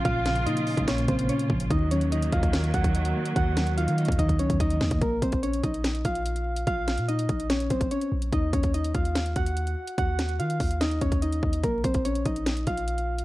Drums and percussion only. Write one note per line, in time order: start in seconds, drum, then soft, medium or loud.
0.05 kick loud
0.05 closed hi-hat medium
0.26 snare loud
0.26 closed hi-hat medium
0.36 closed hi-hat medium
0.47 closed hi-hat medium
0.57 closed hi-hat medium
0.67 open hi-hat medium
0.77 kick loud
0.77 closed hi-hat medium
0.88 snare loud
0.88 closed hi-hat medium
0.98 closed hi-hat medium
1.08 kick medium
1.08 closed hi-hat medium
1.19 closed hi-hat medium
1.29 closed hi-hat medium
1.39 closed hi-hat medium
1.50 kick loud
1.60 closed hi-hat medium
1.70 kick loud
1.70 closed hi-hat medium
1.91 closed hi-hat medium
2.01 closed hi-hat medium
2.12 closed hi-hat medium
2.22 closed hi-hat medium
2.32 kick medium
2.32 closed hi-hat medium
2.43 kick loud
2.43 closed hi-hat medium
2.53 snare loud
2.53 closed hi-hat medium
2.64 closed hi-hat medium
2.74 kick medium
2.74 closed hi-hat medium
2.84 kick medium
2.84 closed hi-hat medium
2.95 closed hi-hat medium
3.05 closed hi-hat medium
3.25 closed hi-hat medium
3.36 kick loud
3.36 closed hi-hat medium
3.57 snare loud
3.57 closed hi-hat medium
3.67 closed hi-hat medium
3.78 closed hi-hat medium
3.88 closed hi-hat medium
3.98 closed hi-hat soft
3.98 open hi-hat medium
4.05 kick loud
4.05 closed hi-hat medium
4.12 closed hi-hat medium
4.19 kick medium
4.19 closed hi-hat medium
4.29 kick medium
4.29 closed hi-hat medium
4.39 closed hi-hat medium
4.50 kick medium
4.50 closed hi-hat medium
4.60 kick medium
4.60 closed hi-hat medium
4.70 closed hi-hat medium
4.81 snare loud
4.91 kick loud
4.91 closed hi-hat medium
5.01 kick loud
5.01 closed hi-hat medium
5.22 kick loud
5.22 closed hi-hat medium
5.32 kick medium
5.32 closed hi-hat medium
5.43 closed hi-hat medium
5.53 closed hi-hat medium
5.63 kick medium
5.63 closed hi-hat medium
5.74 closed hi-hat medium
5.84 snare loud
5.84 closed hi-hat medium
5.95 closed hi-hat medium
6.05 kick medium
6.05 closed hi-hat medium
6.15 closed hi-hat medium
6.26 closed hi-hat medium
6.36 closed hi-hat medium
6.56 closed hi-hat medium
6.67 kick loud
6.67 closed hi-hat medium
6.88 snare loud
6.88 closed hi-hat medium
6.98 closed hi-hat medium
7.09 closed hi-hat medium
7.19 closed hi-hat medium
7.29 kick medium
7.29 closed hi-hat medium
7.40 closed hi-hat medium
7.50 snare loud
7.50 closed hi-hat medium
7.60 closed hi-hat medium
7.70 kick medium
7.70 closed hi-hat medium
7.81 kick medium
7.81 closed hi-hat medium
7.91 closed hi-hat medium
8.01 closed hi-hat medium
8.22 closed hi-hat medium
8.33 kick loud
8.33 closed hi-hat medium
8.53 kick loud
8.53 closed hi-hat medium
8.63 kick medium
8.63 closed hi-hat medium
8.74 closed hi-hat medium
8.84 closed hi-hat medium
8.94 kick medium
8.94 closed hi-hat medium
9.05 closed hi-hat medium
9.15 snare loud
9.15 closed hi-hat medium
9.26 closed hi-hat medium
9.36 kick medium
9.36 closed hi-hat medium
9.46 closed hi-hat medium
9.57 closed hi-hat medium
9.67 closed hi-hat medium
9.87 closed hi-hat medium
9.98 kick loud
9.98 closed hi-hat medium
10.19 snare medium
10.19 closed hi-hat medium
10.29 closed hi-hat medium
10.40 closed hi-hat medium
10.50 closed hi-hat medium
10.60 kick medium
10.60 open hi-hat medium
10.71 closed hi-hat medium
10.81 snare loud
10.81 closed hi-hat medium
10.91 closed hi-hat medium
11.01 kick medium
11.01 closed hi-hat medium
11.12 kick medium
11.12 closed hi-hat medium
11.22 closed hi-hat medium
11.32 closed hi-hat medium
11.43 kick loud
11.53 closed hi-hat medium
11.64 kick loud
11.64 closed hi-hat medium
11.84 kick loud
11.84 closed hi-hat medium
11.94 kick medium
11.94 closed hi-hat medium
12.05 closed hi-hat medium
12.15 closed hi-hat medium
12.25 kick medium
12.25 closed hi-hat medium
12.36 closed hi-hat medium
12.46 snare loud
12.46 closed hi-hat medium
12.57 closed hi-hat medium
12.67 kick medium
12.67 closed hi-hat medium
12.77 closed hi-hat medium
12.88 closed hi-hat medium
12.98 closed hi-hat medium
13.18 closed hi-hat medium